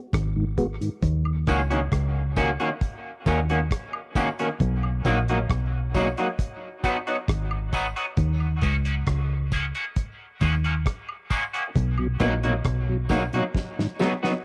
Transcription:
0.13 G#1, kick, cross-stick, closed hi-hat
0.36 G#2 D#3
0.58 G#3 B3 F#4, kick, closed hi-hat
0.81 G#2 D#3, closed hi-hat
1.03 D#2, kick, closed hi-hat
1.25 high woodblock
1.47 C#2 D#3 A#3 C#4 F#4, kick, closed hi-hat, tambourine
1.70 D#3 A#3 C#4 F#4, closed hi-hat
1.92 C#2, kick, cross-stick, closed hi-hat
2.37 D#3 A#3 C#4 F#4, kick, closed hi-hat, tambourine
2.60 D#3 A#3 C#4 F#4, closed hi-hat
2.81 kick, closed hi-hat
3.26 D#2 D#3 A#3 C#4 F#4, kick, closed hi-hat, tambourine
3.49 D#3 A#3 C#4 F#4, closed hi-hat
3.71 kick, cross-stick, closed hi-hat
3.93 high woodblock
4.16 D#3 A#3 C#4 F#4, kick, closed hi-hat, tambourine
4.39 D#3 A#3 C#4 F#4, closed hi-hat
4.60 B1, kick, closed hi-hat
4.83 high woodblock
5.05 A#1 F#3 A#3 D#4 F#4, kick, closed hi-hat, tambourine
5.28 F#3 A#3 D#4 F#4, closed hi-hat
5.50 B1, kick, cross-stick, closed hi-hat
5.94 F#3 A#3 D#4 F#4, kick, closed hi-hat, tambourine
6.17 F#3 A#3 D#4 F#4, closed hi-hat
6.39 kick, closed hi-hat
6.84 F#3 B3 D#4 F#4, kick, cross-stick, closed hi-hat, tambourine
7.07 F#3 B3 D#4 F#4, closed hi-hat
7.28 G#1, kick, cross-stick, closed hi-hat
7.51 high woodblock
7.73 F#3 B3 D#4 F#4, kick, closed hi-hat, tambourine
7.96 F#3 B3 D#4 F#4, closed hi-hat
8.17 D#2, kick, closed hi-hat
8.40 high woodblock
8.62 C#2 D#3 A#3 C#4 F#4, kick, closed hi-hat, tambourine
8.85 D#3 A#3 C#4 F#4, closed hi-hat
9.07 C#2, kick, cross-stick, closed hi-hat
9.51 D#3 A#3 C#4 F#4, kick, closed hi-hat, tambourine
9.74 D#3 A#3 C#4 F#4, closed hi-hat
9.96 kick, closed hi-hat
10.41 D#2 D#3 A#3 C#4 F#4, kick, closed hi-hat, tambourine
10.64 D#3 A#3 C#4 F#4, closed hi-hat
10.86 kick, cross-stick, closed hi-hat
11.09 high woodblock
11.30 D#3 A#3 C#4 F#4, kick, closed hi-hat, tambourine
11.53 D#3 A#3 C#4 F#4, closed hi-hat
11.75 B1, kick, closed hi-hat
11.98 B2 F#3, high woodblock
12.20 A#1 F#3 A#3 B3 D#4 F#4, kick, closed hi-hat, tambourine
12.43 B2 F#3 A#3 D#4 F#4, closed hi-hat
12.65 B1, kick, cross-stick, closed hi-hat
12.89 B2 F#3
13.09 F#3 A#3 B3 D#4 F#4, kick, closed hi-hat, tambourine
13.33 B2 F#3 A#3 D#4 F#4, closed hi-hat
13.54 kick, snare
13.78 G#2 D#3, snare
13.99 F#3 G#3 B3 D#4 F#4, snare, tambourine
14.23 F#3 B3 D#4 F#4, snare

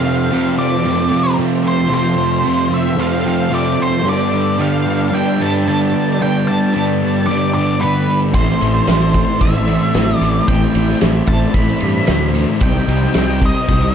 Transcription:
Already playing: F2 C3 F3 A3 C4 F4 A4 C5 F5 G5
0.04 C3 F3
0.30 F2 C3 F3 A3 C4
0.58 C3 F3 D5
0.83 F2 C3 F3 A3 C4
1.09 F3 A3 C4
1.14 C3
1.36 F2 C3 F3 A3 C4
1.63 C3 F3
1.68 C5
1.89 F2 C3 F3 A3 C4
1.94 C5
2.16 C3 F3
2.42 F2 C3 F3 A3 C4
2.69 C3 F3
2.74 E5
2.97 F2 C3 F3 A3 C4 F5
3.24 C3 F3 A3 C4
3.28 F5
3.50 F2 C3 F3 A3 C4
3.55 D5
3.76 C3 F3
3.82 C5
4.04 G2 D3 G3 B3 D4 D5
4.09 D5
4.31 D3 G3
4.57 G2 D3 G3 B3 D4
4.62 F5
4.86 D3 G3
5.12 G2 D3 G3 B3 D4 G5
5.40 D3 G3 B3 D4 A5
5.65 G2 D3 G3 B3 D4 A5
5.92 D3 G3
6.20 G2 D3 G3 B3 D4 G5
6.46 D3 G3 A5
6.74 G2 D3 G3 B3 D4 A5
7.01 D3 G3
7.27 G2 D3 G3 B3 D4 D5
7.53 D3 G3 B3 D4 D5
7.80 G2 D3 G3 B3 D4 B4
7.85 G3
8.08 D3 G3
8.33 A1 A2 E3 A3 C4 E4 C5 A5, kick, ride, tambourine
8.49 tambourine
8.61 A1 E3 A3, ride, tambourine
8.87 A1 A2 E3 A3 C4 E4, snare, ride, tambourine
8.93 A3
9.13 A3, kick, ride, tambourine
9.19 E3
9.41 A1 A2 E3 A3 C4 E4 E5, kick, ride, tambourine
9.54 tambourine
9.68 A3 C4 E4, ride
9.72 E3
9.94 A1 A2 E3 A3 C4 E4, snare, ride, tambourine
10.09 tambourine
10.18 A1 D5, ride, tambourine
10.23 E3 A3
10.47 A1 A2 E3 A3 C4 E4 G5 B5, kick, ride, tambourine
10.62 tambourine
10.74 A1 A3, ride, tambourine
10.79 E3
10.89 snare
11.01 A1 A2 E3 A3 C4 E4, snare, ride, tambourine
11.27 A1 A3 A5, kick, ride, tambourine
11.31 E3
11.54 A1 A2 E3 A3 C4 E4 B5, kick, ride, tambourine
11.69 tambourine
11.80 G2 A3 C4 E4, ride
11.85 E3
12.07 D2 A2 E3 A3 C4 E4, snare, ride, tambourine
12.21 tambourine
12.33 E3 A3, ride, tambourine
12.60 C2 C3 G3 C4 D#4 D#5 G5, kick, ride, tambourine
12.75 tambourine
12.87 C2 G3 C4, ride, tambourine
13.02 snare
13.14 C2 C3 G3 C4 D#4, snare, ride, tambourine
13.28 tambourine
13.41 G3 C4, kick, ride, tambourine
13.46 D#5
13.68 C2 C3 G3 C4 D#4, kick, ride, tambourine
13.82 tambourine

